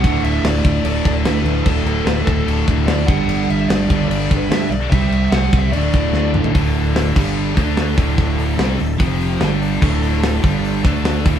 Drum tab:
CC |x-x-x-x-x-x-x-x-|x-x-x-x-x-x-x-x-|x-x-x-x-x-x-x-x-|x-x-x-x-x-x-----|
HH |----------------|----------------|----------------|----------------|
SD |----o-------o---|----o-------o---|----o-------o---|----o-------o---|
T2 |----------------|----------------|----------------|--------------o-|
FT |----------------|----------------|----------------|---------------o|
BD |o-----o---o-----|o-----o---o---o-|------o---o-----|o-----o---o-----|

CC |------x---------|----------------|x---------------|
HH |o-o-o-----o-o-o-|o-o-o-o-o-o-o-o-|--o-o-o-o-o-o-o-|
SD |----o-------o---|----o-------o---|---oo-----o-o---|
T2 |----------------|----------------|----------------|
FT |----------------|----------------|----------------|
BD |o-----o---o---o-|o-------o-------|o-----o---o---o-|